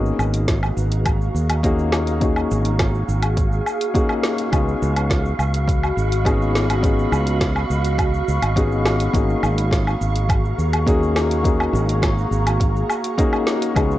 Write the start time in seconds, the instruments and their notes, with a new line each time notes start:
Already playing: fretless electric bass G#1, grand piano A#3 C#4 D#4 F#4 G#4, ambient pad F#4 G#4 A#5 C#6, synth texture F5
0.06 cabasa
0.19 fretless electric bass G#1, cabasa, low woodblock
0.34 closed hi-hat, cabasa
0.48 kick, snare, closed hi-hat, cabasa
0.63 cabasa, low woodblock
0.77 fretless electric bass G#1, cabasa
0.92 closed hi-hat, cabasa
1.05 kick, closed hi-hat, cabasa, low woodblock
1.21 cabasa
1.35 fretless electric bass D#2, cabasa
1.50 closed hi-hat, cabasa, low woodblock
1.63 grand piano A#3 C#4 D#4 F#4 G#4, kick, closed hi-hat, cabasa
1.79 cabasa
1.92 snare, cabasa, low woodblock
2.07 closed hi-hat, cabasa
2.20 grand piano A#3 C#4 D#4 F#4 G#4, ambient pad G#5, kick, closed hi-hat, cabasa
2.36 cabasa, low woodblock
2.51 fretless electric bass G#1, cabasa
2.65 closed hi-hat, cabasa
2.79 kick, snare, closed hi-hat, cabasa, low woodblock
2.95 cabasa
3.08 fretless electric bass G#1, cabasa
3.22 closed hi-hat, cabasa, low woodblock
3.37 kick, closed hi-hat, cabasa
3.52 cabasa
3.66 cabasa, low woodblock
3.81 closed hi-hat, cabasa
3.94 grand piano A#3 C#4 D#4 F#4 G#4, kick, closed hi-hat, cabasa
4.09 cabasa, low woodblock
4.23 snare, cabasa
4.38 closed hi-hat, cabasa
4.51 fretless electric bass C#2, grand piano B3 C#4 D#4 F#4 G#4, ambient pad F#4 D#5 B5, kick, closed hi-hat, cabasa, low woodblock
4.68 cabasa
4.82 fretless electric bass C#2, cabasa
4.96 closed hi-hat, cabasa, low woodblock
5.10 kick, snare, closed hi-hat, cabasa
5.26 cabasa
5.39 fretless electric bass C#2, cabasa, low woodblock
5.54 closed hi-hat, cabasa
5.67 kick, closed hi-hat, cabasa
5.83 cabasa, low woodblock
5.97 fretless electric bass G#1, cabasa
6.12 closed hi-hat, cabasa
6.24 grand piano B3 C#4 D#4 F#4 G#4, kick, closed hi-hat, cabasa, low woodblock
6.42 cabasa
6.55 snare, cabasa
6.70 closed hi-hat, cabasa, low woodblock
6.81 grand piano B3 C#4 D#4 F#4 G#4, kick, closed hi-hat, cabasa
6.99 cabasa
7.12 fretless electric bass C#2, cabasa, low woodblock
7.27 closed hi-hat, cabasa
7.41 kick, snare, closed hi-hat, cabasa
7.56 cabasa, low woodblock
7.70 fretless electric bass C#2, cabasa
7.85 closed hi-hat, cabasa
7.98 kick, closed hi-hat, cabasa, low woodblock
8.14 cabasa
8.28 fretless electric bass C#2, cabasa
8.42 fretless electric bass G#1, closed hi-hat, cabasa, low woodblock
8.56 grand piano B3 C#4 D#4 F#4 G#4, kick, closed hi-hat, cabasa
8.72 cabasa
8.85 snare, cabasa, low woodblock
9.00 closed hi-hat, cabasa
9.13 fretless electric bass G#1, grand piano A#3 C#4 D#4 F#4 G#4, ambient pad F#4 G#4 A#5, kick, closed hi-hat, cabasa
9.30 cabasa
9.43 fretless electric bass G#1, cabasa, low woodblock
9.58 closed hi-hat, cabasa
9.71 kick, snare, closed hi-hat, cabasa
9.87 cabasa, low woodblock
10.01 fretless electric bass G#1, cabasa
10.15 closed hi-hat, cabasa
10.29 kick, closed hi-hat, cabasa, low woodblock
10.45 cabasa
10.58 fretless electric bass D#2, cabasa
10.73 closed hi-hat, cabasa, low woodblock
10.86 grand piano A#3 C#4 D#4 F#4 G#4, kick, closed hi-hat, cabasa
11.03 cabasa
11.16 snare, cabasa, low woodblock
11.31 closed hi-hat, cabasa
11.43 grand piano A#3 C#4 D#4 F#4 G#4, kick, closed hi-hat, cabasa
11.60 cabasa, low woodblock
11.73 fretless electric bass G#1, cabasa
11.89 closed hi-hat, cabasa
12.02 kick, snare, closed hi-hat, cabasa, low woodblock
12.18 cabasa
12.31 fretless electric bass G#1, cabasa
12.47 closed hi-hat, cabasa, low woodblock
12.60 kick, closed hi-hat, cabasa
12.76 cabasa
12.89 cabasa, low woodblock
13.04 closed hi-hat, cabasa
13.18 grand piano A#3 C#4 D#4 F#4 G#4, kick, closed hi-hat, cabasa
13.33 cabasa, low woodblock
13.47 snare, cabasa
13.62 closed hi-hat, cabasa
13.75 fretless electric bass C#2, grand piano B3 C#4 D#4 F#4 G#4, kick, closed hi-hat, cabasa, low woodblock
13.91 cabasa